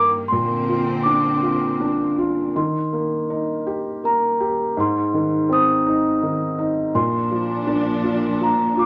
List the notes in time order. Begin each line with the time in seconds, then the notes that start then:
Already playing: G2 D#3 G3 A#3 G4 A#4
0.28 A#2 D3 C4 C6
0.69 F4
1.03 D4 D6
1.43 F4
1.80 D4
2.18 F4
2.56 D#3 C6
2.93 A#3
3.30 D#4
3.67 G4
4.04 A#3 A#5
4.40 G4
4.77 G#2 C6
5.14 D#3
5.49 C4 D#6
5.86 D#4
6.23 D#3
6.58 D#4
6.94 A#2 F3 D4 C6
7.31 F3
7.67 D4
8.04 F4
8.41 F3 A#5
8.77 F4 D6